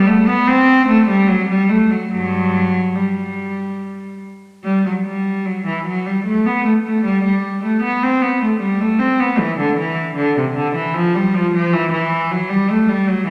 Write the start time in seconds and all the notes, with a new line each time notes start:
0.07 A3
0.28 B3
0.47 C4
0.88 A3
1.09 G3
1.28 F#3
1.50 G3
1.69 A3
1.91 F#3
2.12 G2 F#3
2.96 G3
4.64 G3
4.86 F#3
5.05 G3
5.46 F#3
5.67 E3
5.86 F#3
6.06 G3
6.25 A3
6.46 B3
6.65 A3
6.86 A3
7.05 G3
7.25 G3
7.65 A3
7.83 B3
8.03 C4
8.22 B3
8.42 A3
8.60 G3
8.80 A3
8.99 C4
9.20 B3
9.39 E3
9.59 D3
9.78 E3
10.16 D3
10.37 C3
10.55 D3
10.75 E3
10.94 F3
11.15 G3
11.35 F3
11.55 F3
11.74 E3
11.92 E3
12.31 F#3
12.49 G3
12.71 A3
12.89 G3
13.09 F#3